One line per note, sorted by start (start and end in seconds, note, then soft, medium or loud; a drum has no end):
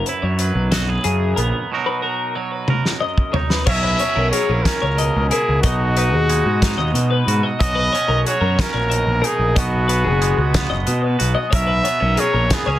0.00 1.71 F#2 medium
0.00 0.41 F#3 medium
0.06 1.68 E4 medium
0.06 0.22 B4 medium
0.06 closed hi-hat medium
0.22 0.51 F#2 medium
0.22 0.39 C#5 medium
0.39 1.73 F#3 medium
0.39 0.72 B4 medium
0.39 closed hi-hat medium
0.55 0.97 B1 medium
0.72 0.89 F#4 medium
0.72 0.88 D#5 medium
0.72 snare loud
0.72 closed hi-hat medium
0.88 1.71 G#4 soft
0.88 1.04 B4 medium
1.04 1.33 F#2 medium
1.04 1.66 C#3 medium
1.04 1.37 G#4 medium
1.04 closed hi-hat medium
1.36 1.52 A#1 medium
1.36 1.71 B3 medium
1.36 1.70 A#4 medium
1.36 closed hi-hat medium
1.72 3.02 B2 medium
1.72 2.35 F#3 medium
1.72 3.35 D#4 medium
1.72 2.02 F#4 medium
1.72 2.69 A#4 medium
1.86 2.02 B4 medium
2.02 3.63 F#4 medium
2.02 2.35 A#4 medium
2.35 3.66 F#3 medium
2.35 2.52 C#5 medium
2.52 2.85 B4 medium
2.68 3.64 A#4 medium
2.68 high tom medium
2.85 snare soft
3.00 3.67 F#2 medium
3.00 3.33 D#5 medium
3.18 kick medium
3.33 3.64 D#4 medium
3.33 3.50 C#5 medium
3.33 floor tom medium
3.50 3.66 B4 medium
3.50 snare medium
3.66 3.95 B1 loud
3.66 4.96 B2 medium
3.66 4.32 F#3 medium
3.66 3.99 C#4 medium
3.66 5.31 E4 medium
3.66 4.32 A#4 medium
3.66 3.83 C#5 loud
3.66 4.29 E5 loud
3.66 kick loud
3.66 crash loud
3.83 3.99 B4 medium
3.99 4.64 C#4 medium
3.99 4.16 C#5 medium
3.99 closed hi-hat medium
4.16 4.30 B1 medium
4.16 4.32 A#4 medium
4.31 6.29 F#3 medium
4.31 4.49 G#4 medium
4.31 5.60 A#4 medium
4.31 4.65 C#5 medium
4.31 closed hi-hat medium
4.49 4.63 A#1 medium
4.49 4.82 A#4 medium
4.63 5.60 C#4 medium
4.63 5.28 A#4 medium
4.63 kick medium
4.63 snare loud
4.63 closed hi-hat medium
4.82 5.10 C#2 medium
4.82 4.98 C#5 medium
4.97 5.63 B2 medium
4.97 5.31 D#5 medium
4.97 closed hi-hat medium
5.16 5.29 C#2 medium
5.29 5.60 E4 medium
5.29 5.60 G#4 medium
5.29 5.64 A#4 medium
5.29 closed hi-hat medium
5.49 5.62 C#2 medium
5.62 6.14 B1 medium
5.62 6.93 B2 medium
5.62 5.97 D#4 medium
5.62 7.23 F#4 loud
5.62 5.97 D#5 medium
5.62 kick loud
5.62 closed hi-hat medium
5.97 6.30 D#4 medium
5.97 6.14 B4 medium
5.97 closed hi-hat medium
6.14 6.41 D#2 medium
6.14 6.46 G#4 medium
6.29 7.56 G#3 medium
6.29 6.62 D#4 medium
6.29 closed hi-hat medium
6.46 6.74 G#2 loud
6.46 6.78 F#4 medium
6.62 7.95 D#4 medium
6.62 kick medium
6.62 snare loud
6.62 closed hi-hat medium
6.78 6.92 D#2 medium
6.78 7.10 D#5 medium
6.94 7.22 B2 medium
6.94 7.58 B2 medium
6.94 closed hi-hat medium
7.11 7.43 B4 medium
7.27 7.41 G#2 medium
7.27 7.61 F#4 medium
7.27 closed hi-hat medium
7.43 7.59 D#5 medium
7.59 7.88 B1 loud
7.59 8.91 B2 medium
7.59 8.27 F#4 medium
7.59 7.75 C#5 medium
7.59 8.22 D#5 loud
7.59 kick loud
7.59 closed hi-hat medium
7.75 7.92 B4 medium
7.93 8.59 C#4 medium
7.93 8.08 C#5 medium
7.93 closed hi-hat medium
8.08 8.23 B1 medium
8.08 8.25 A#4 medium
8.25 10.20 F#3 medium
8.25 11.19 F#4 medium
8.25 8.40 G#4 medium
8.25 8.62 C#5 loud
8.25 closed hi-hat medium
8.41 8.55 F#2 loud
8.41 8.73 A#4 medium
8.59 9.54 C#4 medium
8.59 9.26 A#4 medium
8.59 kick medium
8.59 snare loud
8.59 closed hi-hat medium
8.73 9.02 A#1 medium
8.73 8.90 C#5 medium
8.90 9.55 B2 medium
8.90 9.23 D#5 medium
8.90 closed hi-hat medium
9.07 9.21 A#1 medium
9.22 11.18 D#4 medium
9.22 9.59 G#4 medium
9.22 9.56 A#4 medium
9.22 closed hi-hat medium
9.39 9.54 A#1 medium
9.56 10.06 B1 medium
9.56 10.85 B2 medium
9.56 9.88 B3 medium
9.56 11.21 F#4 loud
9.56 9.88 D#5 medium
9.56 kick loud
9.56 closed hi-hat medium
9.88 10.21 B3 medium
9.88 10.05 B4 medium
9.88 closed hi-hat medium
10.04 10.33 F#1 medium
10.04 10.38 G#4 medium
10.21 11.56 G#3 medium
10.21 10.55 B3 medium
10.21 closed hi-hat medium
10.38 10.66 C#2 loud
10.38 10.71 F#4 medium
10.54 11.54 B3 medium
10.54 kick medium
10.54 snare loud
10.54 closed hi-hat medium
10.70 10.84 F#1 medium
10.70 11.02 D#5 medium
10.87 11.51 B2 medium
10.87 11.15 B2 medium
10.87 closed hi-hat medium
11.02 11.34 B4 medium
11.19 11.34 B1 medium
11.19 12.79 F#4 medium
11.19 closed hi-hat medium
11.35 11.50 D#5 medium
11.51 11.81 B1 loud
11.51 12.79 B2 medium
11.51 12.17 A#4 medium
11.51 11.66 C#5 medium
11.51 12.21 E5 loud
11.51 kick loud
11.51 closed hi-hat loud
11.67 11.84 B4 medium
11.84 12.00 B3 medium
11.84 12.00 C#5 medium
11.84 closed hi-hat medium
12.00 12.16 B1 medium
12.00 12.50 C#4 soft
12.00 12.18 A#4 medium
12.17 12.79 F#3 medium
12.17 12.34 G#4 medium
12.17 12.79 A#4 medium
12.17 12.56 C#5 loud
12.17 closed hi-hat medium
12.33 12.48 A#1 medium
12.33 12.66 A#4 medium
12.50 12.67 B3 medium
12.50 12.79 G#4 loud
12.50 kick medium
12.50 snare loud
12.50 closed hi-hat medium
12.66 12.79 C#2 medium
12.66 12.79 C#4 medium
12.66 12.79 C#5 medium